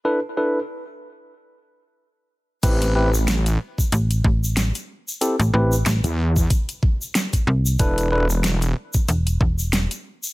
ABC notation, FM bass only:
X:1
M:4/4
L:1/16
Q:"Swing 16ths" 1/4=93
K:Am
V:1 name="FM bass" clef=bass
z16 | z8 A,,,2 A,,,3 z3 | z A,,, A,,,2 A,,, z8 z C,,2 | z8 E,,,2 E,,,3 z3 |]